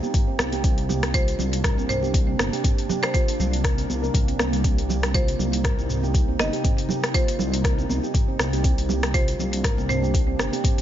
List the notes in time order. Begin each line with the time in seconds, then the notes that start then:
Already playing: C3 A#3 D#4
0.03 G4, high conga, cabasa
0.14 kick, closed hi-hat, mid tom, cabasa
0.28 C4
0.39 C2, cross-stick, high conga, cabasa
0.53 G4, closed hi-hat, muted conga, cabasa
0.64 C3 C4 D4, kick, closed hi-hat, cabasa
0.78 closed hi-hat
0.89 G4, high conga, low conga, cabasa
1.03 cross-stick, closed hi-hat, muted conga, cabasa
1.14 F4 C5, kick, closed hi-hat, cabasa
1.28 closed hi-hat, cabasa
1.39 C2 G3, muted conga, low conga, cabasa
1.53 closed hi-hat, cabasa
1.64 A#4, kick, cross-stick, closed hi-hat, mid tom, cabasa
1.78 C4, muted conga, cabasa
1.89 C5, mid tom, cabasa
2.03 G4, high conga, cabasa
2.14 kick, closed hi-hat, muted conga, cabasa
2.28 C4
2.39 G1, cross-stick, high conga, cabasa
2.53 G4, closed hi-hat, muted conga, cabasa
2.64 C4, kick, closed hi-hat, mid tom, high conga, cabasa
2.78 closed hi-hat
2.89 G4, high conga, low conga, cabasa
3.03 C5, cross-stick, closed hi-hat, muted conga, cabasa
3.14 F4 C5, kick, closed hi-hat, cabasa
3.28 closed hi-hat, cabasa
3.39 C2 G3, low conga, cabasa
3.53 closed hi-hat, cabasa
3.64 A#4, kick, cross-stick, closed hi-hat, cabasa
3.78 C4, closed hi-hat, muted conga, cabasa
3.89 C2, high conga, cabasa
4.03 A#4, high conga, cabasa
4.14 C2, kick, closed hi-hat, mid tom, muted conga, cabasa
4.28 C4, closed hi-hat
4.39 C2, cross-stick, high conga, cabasa
4.53 G3, closed hi-hat, muted conga, cabasa
4.64 C4 D#4, kick, closed hi-hat, cabasa
4.78 closed hi-hat
4.89 G4, high conga, low conga, cabasa
5.03 cross-stick, closed hi-hat, muted conga, cabasa
5.14 F4 C5, kick, closed hi-hat, cabasa
5.28 closed hi-hat, cabasa
5.39 C2 G3, muted conga, low conga, cabasa
5.53 closed hi-hat, cabasa
5.64 A#4, kick, cross-stick, closed hi-hat, mid tom, cabasa
5.78 C4, muted conga, cabasa
5.89 mid tom, cabasa
6.03 G4, high conga, cabasa
6.14 kick, closed hi-hat, muted conga, cabasa
6.28 C4
6.39 G1 D#5, cross-stick, high conga, cabasa
6.53 G4, closed hi-hat, muted conga, cabasa
6.64 C4, kick, closed hi-hat, mid tom, high conga, cabasa
6.78 closed hi-hat
6.89 G4, high conga, low conga, cabasa
7.03 cross-stick, closed hi-hat, muted conga, cabasa
7.14 F4 C5, kick, closed hi-hat, cabasa
7.28 closed hi-hat, cabasa
7.39 C2 G3, low conga, cabasa
7.54 closed hi-hat, cabasa
7.64 A#4, kick, cross-stick, closed hi-hat, cabasa
7.78 C4, muted conga, cabasa
7.89 C2, high conga, cabasa
8.03 G4, high conga, cabasa
8.14 kick, closed hi-hat, mid tom, muted conga, cabasa
8.28 C4
8.39 C2, cross-stick, high conga, cabasa
8.53 G4, closed hi-hat, muted conga, cabasa
8.64 C3 A#3 C4 D4, kick, closed hi-hat, cabasa
8.78 closed hi-hat
8.89 G4, high conga, low conga, cabasa
9.03 cross-stick, closed hi-hat, muted conga, cabasa
9.14 F4 C5, kick, closed hi-hat, cabasa
9.28 closed hi-hat, cabasa
9.39 C2 G3, muted conga, low conga, cabasa
9.53 closed hi-hat, cabasa
9.64 A#4, kick, cross-stick, closed hi-hat, mid tom, cabasa
9.78 C4, muted conga, cabasa
9.89 C5, mid tom, cabasa
10.02 G4, high conga, cabasa
10.14 kick, closed hi-hat, muted conga, cabasa
10.28 C4
10.39 G1, cross-stick, high conga, cabasa
10.53 G4, closed hi-hat, muted conga, cabasa
10.64 C4, kick, closed hi-hat, mid tom, high conga, cabasa
10.78 closed hi-hat